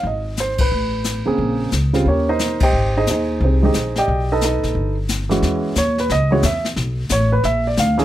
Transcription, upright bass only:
X:1
M:4/4
L:1/8
Q:"Swing" 1/4=178
K:Ab
V:1 name="Upright bass" clef=bass
A,,,4 =A,,,3 z | B,,,2 D,,2 E,,4 | A,,,2 E,,2 C,,2 B,,,2 | =B,,,3 _B,,, G,,,4 |
[K:E] E,,2 D,,2 C,,2 E,,2 | B,,,2 A,,,2 ^A,,,2 =D,,2 |]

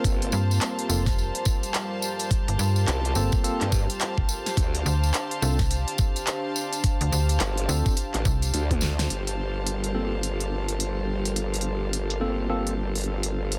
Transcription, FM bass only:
X:1
M:4/4
L:1/16
Q:"Swing 16ths" 1/4=106
K:Gm
V:1 name="FM bass" clef=bass
z2 G,,2 z2 F,,,3 z6 z | z G,,, G,,2 z2 G,,, z8 z | z2 D,,2 z2 C,,3 z6 z | z D,, D,,2 z2 D,, z3 C,,2 z4 |
z16 | z16 |]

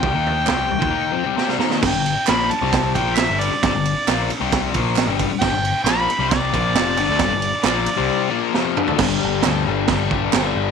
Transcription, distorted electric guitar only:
X:1
M:4/4
L:1/16
Q:1/4=134
K:C
V:1 name="Distorted electric guitar" clef=bass
[C,G,] [_E,_B,_E]3 [C,G,C]2 [C,G,] [E,B,] [E,B,E]2 [F,C] [C,G,] [CG] [C,G,] [E,B,E]2 | [G,,D,] [G,,D,]2 z [_B,,F,_B,]2 z [C,G,C]3 [B,,F,B,]3 [G,,D,G,]2 z | [G,,D,] [G,,D,]2 z [_B,,F,_B,]2 z [C,G,C]3 [B,,F,B,]3 [G,,D,G,]2 z | [G,,D,] [G,,D,]2 z [_B,,F,_B,]2 z [C,G,C]3 [B,,F,B,]2 [F,,C,F,]2 [G,,D,] [D,A,] |
[G,,D,] [G,,D,]2 z [_B,,F,_B,]2 z [C,G,C]3 [B,,F,B,]2 [F,,C,F,]2 [G,,D,] [D,A,] | [G,,D,G,]2 [D,G,]2 [G,,D,G,]2 [D,G,]2 [G,,D,G,]2 [D,G,]2 [G,,D,G,]4 |]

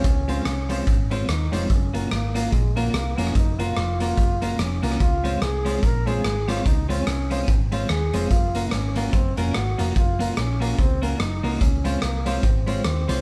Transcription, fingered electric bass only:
X:1
M:4/4
L:1/8
Q:"Swing" 1/4=145
K:Gblyd
V:1 name="Fingered electric bass" clef=bass
D,,2 C,,2 A,,,2 E,, F,,, | G,,,2 A,,,2 B,,,2 C,, F,,, | G,,,2 F,,,2 G,,,2 F,,, C,, | D,,2 C,,2 B,,,2 A,,,2 |
D,,2 C,,2 A,,,2 E,, F,,, | G,,,2 A,,,2 G,,, F,,, A,,, F,,, | G,,,2 B,,,2 D,,2 G,,, C,, | D,,2 C,,2 A,,,2 E,, C,, |]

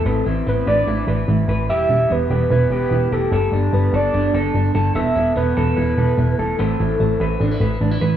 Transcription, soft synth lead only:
X:1
M:4/4
L:1/8
Q:1/4=147
K:Am
V:1 name="Soft synth lead"
A z B d2 z3 | e2 B2 B B2 A- | A z B d2 z3 | e2 B2 B3 A- |
A6 z2 |]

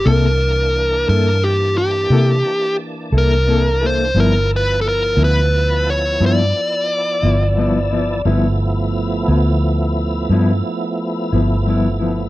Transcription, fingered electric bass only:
X:1
M:12/8
L:1/8
Q:3/8=59
K:Gmix
V:1 name="Fingered electric bass" clef=bass
C,,3 G,,3 C, z2 C,,3 | G,,,3 D,,3 G,, z2 G,,,3 | G,,,3 D,,3 G,, z2 G,,,3 |]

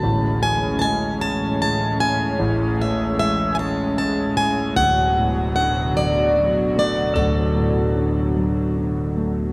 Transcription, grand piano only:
X:1
M:6/8
L:1/8
Q:3/8=51
K:A
V:1 name="Grand piano" clef=bass
[A,,,A,,] E, G, C G, E | [A,,,A,,] E, G, C G, E | [D,,,D,,] A,, D, F, D, A, | [D,,,D,,] A,, D, F, D, A, |]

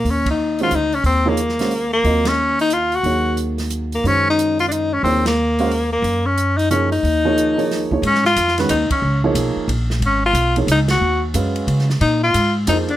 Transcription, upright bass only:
X:1
M:3/4
L:1/8
Q:"Swing" 1/4=181
K:Ebdor
V:1 name="Upright bass" clef=bass
E,,4 =D,,2 | E,,6 | E,,6 | E,,6 |
G,,6 | E,,6 | G,,6 | E,,4- E,, E,, |
[K:G#dor] G,,2 E,,2 D,, z | C,,2 B,,, z A,,,2 | G,,,2 B,,,2 C,,2 | D,,2 F,,2 C,2 |
A,,2 G,,2 E,,2 |]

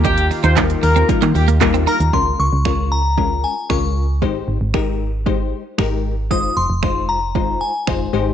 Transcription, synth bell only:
X:1
M:4/4
L:1/16
Q:1/4=115
K:Dblyd
V:1 name="Synth bell"
z12 z2 b2 | c'2 d'4 b4 a2 d'3 z | z16 | e'2 c'4 b4 a4 z2 |]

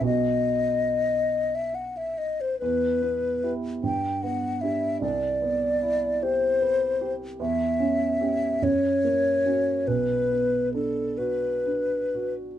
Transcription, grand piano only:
X:1
M:6/8
L:1/8
Q:3/8=48
K:Clyd
V:1 name="Grand piano"
[B,,,B,F]6 | E,, B, [EG] G,, B, [DG] | C,, B, E G B G | [K:Bm] E,, C [CG] F,, ^A, [CF] |
B,,, B, D F D F |]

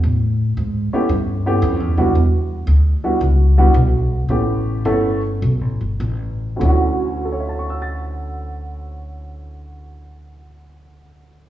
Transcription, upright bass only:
X:1
M:4/4
L:1/8
Q:"Swing" 1/4=104
K:D
V:1 name="Upright bass" clef=bass
A,,2 ^G,, z =G,,2 (3=F,, E,, C,, | E,,2 D,,2 C,,2 B,,,2 | A,,,2 G,,,2 (3B,,, A,,, G,,, A,,,2 | D,,8- |
D,,8 |]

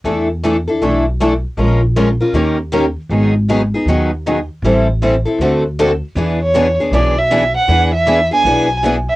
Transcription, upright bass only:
X:1
M:4/4
L:1/8
Q:"Swing" 1/4=157
K:Emix
V:1 name="Upright bass" clef=bass
E,,4 B,,,4 | ^A,,,4 ^D,,4 | G,,,4 ^D,,4 | A,,,4 D,,4 |
E,,4 B,,,4 | E,,4 B,,,4 |]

